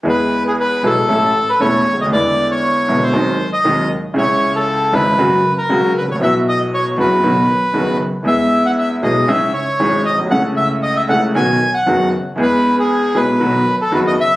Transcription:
<<
  \new Staff \with { instrumentName = "Bandoneon" } { \time 4/4 \key e \major \tempo 4 = 117 b'8. gis'16 b'8 a'4~ a'16 b'16 cis''8. dis''16 | d''8. cis''4 c''4 dis''8. r8 | cis''8. a'8. b'4~ b'16 ais'8. b'16 cis''16 | e''8 dis''8 cis''8 b'2 r8 |
e''8. fis''16 e''8 dis''8 e''8 cis''4 dis''8 | fis''8 e''8 dis''16 e''16 fis''8 gis''8. fis''8. r8 | b'8. gis'8. b'4~ b'16 a'16 b'16 dis''16 e''8 | }
  \new Staff \with { instrumentName = "Grand piano" } { \clef bass \time 4/4 \key e \major <e, e gis b gis'>4. <b,, b, e gis b gis'>8 <a,, a, e a cis' a'>8 r8 <e,, e, e a cis' a'>8 r32 cis,32 d,32 dis,32 | <e, d e gis b e'>4. <b,, b, d gis b e'>8 <dis, bis, dis fis gis dis'>8 r8 <dis, bis, dis fis gis dis'>8 r8 | <cis, cis e e'>4. <gis,, gis, cis e gis e'>8 <fis, cis fis ais fis'>8 r8 <cis, cis fis ais fis'>8 r32 gis,,32 a,,32 ais,,32 | <b,, b, e fis b fis'>4. <fis,, fis, e fis b fis'>8 <b,, b, dis fis b fis'>8 r8 <fis,, fis, dis fis b fis'>8 r8 |
<e, e gis b gis'>4. <b,, b, e gis b gis'>8 <cis, cis e cis' dis' gis'>8 r8 <gis,, gis, e cis' dis' gis'>8 r32 ais,,32 b,,32 c,32 | <cis, cis e a cis' a'>4. <cis, cis e a cis' a'>8 <b,, b, dis fis b fis'>8 r8 <fis,, fis, dis fis b fis'>8 r8 | <e, e gis b gis'>4. <b,, b, e gis b gis'>8 <b,, b, dis fis b fis'>8 r8 <fis,, fis, dis fis b fis'>8 r8 | }
  \new Staff \with { instrumentName = "Upright bass" } { \clef bass \time 4/4 \key e \major e,4~ e,16. r32 b,,16. r32 a,,16. r8 r32 e,,16. r16 cis,32 d,32 dis,32 | e,4~ e,16. r32 b,,16. r32 dis,16. r8 r32 dis,16. r8 r32 | cis,4~ cis,16. r32 gis,,16. r32 fis,,16. r8 r32 cis,16. r16 gis,,32 a,,32 ais,,32 | b,,4~ b,,16. r32 fis,,16. r32 b,,16. r8 r32 fis,,16. r8 r32 |
e,4~ e,16. r32 b,,16. r32 cis,16. r8 r32 gis,,16. r16 ais,,32 b,,32 c,32 | cis,4~ cis,16. r32 cis,16. r32 b,,16. r8 r32 fis,,16. r8 r32 | e,4~ e,16. r32 b,,16. r32 b,,16. r8 r32 fis,,16. r8 r32 | }
>>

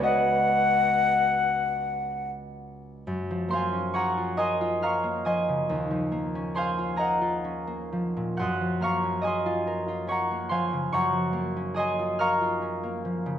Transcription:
<<
  \new Staff \with { instrumentName = "Flute" } { \time 6/8 \key ges \lydian \tempo 4. = 46 ges''2~ ges''16 r8. | r2. | r2. | r2. |
r2. | }
  \new Staff \with { instrumentName = "Harp" } { \time 6/8 \key ges \lydian << { <ees'' fis''>2.~ | <ees'' fis''>8 c'''8 des'''8 ees'''8 f'''8 ees'''8~ | ees'''4 c'''8 bes''4. | ges'''8 f'''8 ees'''4 des'''8 c'''8 |
des'''4 ees'''8 f'''4. | } \\ { ces''2. | r8 <c'' f'' aes''>8 <des'' ges'' bes''>8 <ees'' aes'' c'''>8 <f'' bes'' des'''>8 <ees'' aes'' c'''>8~ | <ees'' aes'' c'''>4 <c'' f'' aes''>8 <bes' ees'' ges''>4. | <ges'' c''' ees'''>8 <f'' bes'' des'''>8 <ees'' aes'' c'''>4 <des'' ges'' bes''>8 <c'' f'' aes''>8 |
<des'' ges'' bes''>4 <ees'' aes'' c'''>8 <f'' bes'' des'''>4. | } >> }
  \new Staff \with { instrumentName = "Harp" } { \time 6/8 \key ges \lydian << { r2. | ges,16 f16 bes16 des'16 aes'16 f'16 bes'16 f'16 des'16 bes16 f16 des16 | ees,16 f16 bes16 des'16 aes'16 f'16 aes'16 f'16 des'16 bes16 f16 bes,16 | ges,16 f16 bes16 des'16 aes'16 f'16 bes'16 f'16 des'16 bes16 f16 des16 |
ges,16 f16 bes16 des'16 aes'16 f'16 bes'16 f'16 des'16 bes16 f16 des16 | } \\ { <des, fis aes ces' des' ges'>2.~ | <des, fis aes ces' des' ges'>2.~ | <des, fis aes ces' des' ges'>2. | r2. |
r2. | } >> }
>>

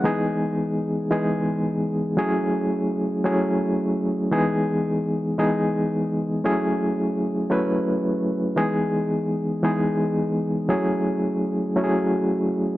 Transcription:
\new Staff \with { instrumentName = "Reed electric piano" } { \time 4/4 \key e \major \tempo 4 = 113 <e gis b dis' gis'>4. r8 <e gis b dis' gis'>4. r8 | <fis a cis' e' gis'>4. r8 <fis a cis' e' gis'>4. r8 | <e gis b dis' gis'>4. r8 <e gis b dis' gis'>4. r8 | <fis a cis' e' gis'>4. r8 <fis a cis' e' b'>4. r8 |
<e gis b dis' gis'>4. r8 <e gis b dis' gis'>4. r8 | <fis a cis' e' gis'>4. r8 <fis a cis' e' fis' gis'>4. r8 | }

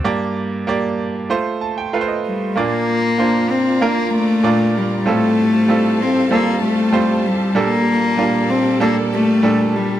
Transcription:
<<
  \new Staff \with { instrumentName = "String section" } { \time 4/4 \key bes \major \tempo 4 = 96 << { r1 | <f' bes''>1 | <g' a''>1~ | <g' a''>1 | } \\ { r1 | d''1 | <a' c'' f''>1 | <bes, a' d''>1 | } >> }
  \new Staff \with { instrumentName = "Grand piano" } { \time 4/4 \key bes \major << { g,4. r4 a''16 g''16 f''16 ees''8. | bes,4. r2 r8 | a,4. r2 r8 | bes,4. r2 r8 | } \\ { <bes g' d''>4 <bes g' d''>4 <a f' c''>4 <a f' ces'' c''>4 | <bes d' f' d''>4 <bes d' f' c''>4 <bes d' f' bes'>4 <bes, d' f' d''>4 | <g c' f' a'>4 <g c' f' a'>4 <g c' f' a'>4 <g c' f' c''>4 | <g bes d' a'>4 <g bes d' f'>4 <g bes d' a'>4 <bes, g d' a'>4 | } >> }
  \new Staff \with { instrumentName = "Cello" } { \time 4/4 \key bes \major r2. r8 g8 | bes4. c'8 bes8 a4 g8 | a4. c'8 bes8 a4 g8 | bes4. c'8 bes8 a4 g8 | }
>>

